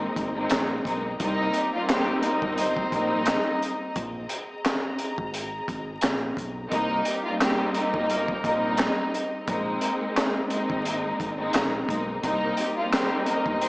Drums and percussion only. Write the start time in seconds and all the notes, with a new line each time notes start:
0.16 kick, closed hi-hat
0.50 snare, clap, closed hi-hat
0.85 kick, closed hi-hat
1.20 kick, closed hi-hat
1.53 closed hi-hat
1.89 snare, clap, closed hi-hat
2.22 closed hi-hat
2.42 kick
2.58 closed hi-hat
2.77 kick
2.92 kick, closed hi-hat
3.25 snare, clap, closed hi-hat
3.62 closed hi-hat
3.96 kick, closed hi-hat
4.29 closed hi-hat
4.65 snare, clap, closed hi-hat
4.99 closed hi-hat
5.18 kick
5.34 closed hi-hat
5.68 kick, closed hi-hat
6.01 snare, clap, closed hi-hat
6.37 kick, closed hi-hat
6.72 kick, closed hi-hat
7.05 closed hi-hat
7.41 snare, clap, closed hi-hat
7.74 closed hi-hat
7.94 kick
8.10 closed hi-hat
8.28 kick
8.44 kick, closed hi-hat
8.77 snare, clap, closed hi-hat
9.14 closed hi-hat
9.48 kick, closed hi-hat
9.81 closed hi-hat
10.16 snare, clap, closed hi-hat
10.50 closed hi-hat
10.70 kick
10.85 closed hi-hat
11.20 kick, closed hi-hat
11.53 snare, clap, closed hi-hat
11.89 kick, closed hi-hat
12.23 kick, closed hi-hat
12.57 closed hi-hat
12.93 snare, clap, closed hi-hat
13.26 closed hi-hat
13.46 kick
13.61 closed hi-hat